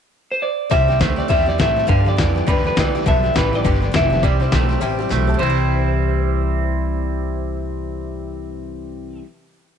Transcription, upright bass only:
0.72 1.00 C2 medium
1.01 1.29 D2 medium
1.30 1.58 E2 medium
1.60 1.88 A2 medium
1.89 2.17 G2 medium
2.19 2.47 F2 loud
2.48 2.76 E2 medium
2.77 3.05 D2 loud
3.06 3.35 B1 medium
3.36 3.64 A1 loud
3.65 3.93 G1 medium
3.94 4.22 F1 medium
4.24 4.52 C2 medium
4.53 4.81 B1 loud
4.82 5.10 A1 medium
5.11 5.39 B1 medium
5.40 9.19 C2 medium

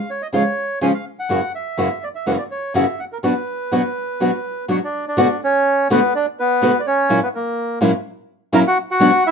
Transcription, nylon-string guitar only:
0.33 0.42 C#3 medium
0.33 0.42 F3 medium
0.33 0.42 G#3 medium
0.33 0.42 C#4 medium
0.33 0.42 F4 medium
0.81 0.90 C#3 medium
0.81 0.91 F3 medium
0.81 0.91 G#3 medium
0.81 0.91 C#4 medium
0.81 0.91 F4 medium
1.29 1.39 F#2 medium
1.29 1.39 C#3 medium
1.29 1.39 E3 medium
1.29 1.39 A#3 medium
1.29 1.39 C#4 medium
1.29 1.39 F#4 medium
1.77 1.87 F#2 medium
1.77 1.87 C#3 medium
1.77 1.87 E3 medium
1.77 1.87 A#3 medium
1.77 1.87 C#4 medium
1.77 1.88 F#4 medium
2.26 2.36 F#2 medium
2.26 2.36 C#3 medium
2.26 2.36 E3 medium
2.26 2.36 A#3 medium
2.26 2.36 C#4 medium
2.26 2.36 F#4 medium
2.74 2.84 F#2 medium
2.74 2.84 C#3 medium
2.74 2.84 E3 medium
2.74 2.84 A#3 medium
2.74 2.84 C#4 medium
2.74 2.84 F#4 medium
3.23 3.32 B2 medium
3.23 3.32 F#3 medium
3.23 3.33 B3 medium
3.23 3.33 D4 medium
3.23 3.33 F#4 medium
3.72 3.81 B2 medium
3.72 3.81 F#3 medium
3.72 3.81 B3 medium
3.72 3.81 D4 medium
3.72 3.81 F#4 medium
4.20 4.29 B2 medium
4.20 4.30 F#3 medium
4.20 4.30 B3 medium
4.20 4.30 D4 medium
4.20 4.30 F#4 medium
4.68 4.78 B2 medium
4.68 4.78 F#3 medium
4.68 4.78 B3 medium
4.68 4.78 D4 medium
4.68 4.78 F#4 medium
5.17 5.26 B2 medium
5.17 5.26 D3 medium
5.17 5.26 A3 medium
5.17 5.27 B3 medium
5.17 5.27 F#4 loud
5.90 5.99 B2 medium
5.90 5.99 D3 medium
5.90 5.99 A3 medium
5.90 5.99 B3 loud
5.90 5.99 F#4 medium
6.62 6.71 B2 loud
6.62 6.71 D3 medium
6.62 6.71 A3 medium
6.62 6.71 B3 medium
6.62 6.71 F#4 loud
7.09 7.19 A#2 medium
7.09 7.19 F#3 medium
7.09 7.19 A#3 medium
7.09 7.19 C#4 medium
7.09 7.19 E4 medium
7.81 7.90 A#2 medium
7.81 7.90 F#3 medium
7.81 7.91 A#3 medium
7.81 7.91 C#4 loud
7.81 7.91 E4 medium
8.53 8.62 A#2 loud
8.53 8.62 F#3 loud
8.53 8.62 A#3 loud
8.53 8.62 C#4 loud
8.53 8.62 E4 loud
9.00 9.09 B2 medium
9.00 9.09 F#3 medium
9.00 9.10 B3 medium
9.00 9.10 D4 loud
9.00 9.10 F#4 loud

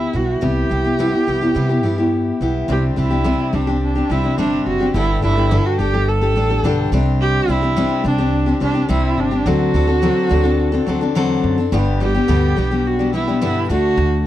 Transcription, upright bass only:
0.14 0.37 B1 medium
0.43 0.66 C2 loud
0.71 1.06 C2 medium
1.28 1.51 C2 medium
1.56 1.84 C3 medium
1.84 2.30 G2 medium
2.41 2.64 B1 medium
2.69 2.92 C2 loud
2.97 3.32 C2 medium
3.53 4.00 C2 medium
4.10 4.33 C2 medium
4.38 4.61 G1 medium
4.66 4.90 F#1 medium
4.94 5.18 G1 loud
5.23 5.57 G1 loud
5.79 6.35 G1 loud
6.35 6.59 A1 medium
6.63 6.87 B1 medium
6.92 7.38 C2 loud
7.48 7.83 C2 loud
8.05 8.51 C2 loud
8.61 8.84 C2 medium
8.89 9.13 C2 medium
9.18 9.41 G1 medium
9.46 9.69 D2 loud
9.74 10.09 D2 medium
10.31 10.77 D2 loud
10.87 11.16 D2 medium
11.16 11.39 E2 medium
11.44 11.67 F#2 loud
11.72 12.18 G1 loud
12.28 12.52 D2 loud
12.57 13.66 B1 medium
13.70 13.93 D2 medium
13.97 14.27 D2 loud

